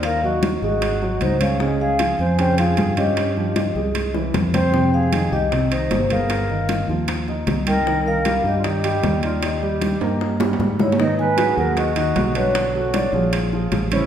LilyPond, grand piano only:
\new Staff \with { instrumentName = "Grand piano" } { \time 4/4 \key ees \major \tempo 4 = 154 <ees' ees''>8 <ges ges'>4 <aes aes'>4 <fis fis'>4 <des' des''>8 | <des des'>4 <f f'>4 <des des'>8 <f f'>4 <des' des''>8~ | <des' des''>8 <f f'>4 <aes aes'>4 <e e'>4 <c' c''>8 | <c c'>4 <ees ees'>4 <c c'>8 <ees ees'>4 <b aes'>8~ |
<b aes'>8 <ees ees'>4 <f f'>4 <ees ees'>4 <ees' ees''>8 | <ees ees'>4 <g g'>4 <ees ees'>8 <g g'>4 <ees' ees''>8~ | <ees' ees''>8 <g g'>4 <bes bes'>4 <g g'>4 <ees' ees''>8 | \key gis \minor <dis dis' dis''>4 <fis fis' gis'>8 <fis fis' gis'>4 <dis dis' dis''>8 <fis fis' gis'>8 <d d' b'>8~ |
<d d' b'>8 <fis fis' a'>8 <d d' d''>8 <eis eis' gis'>4 <eis eis' gis'>4 <cis cis' cis''>8 | }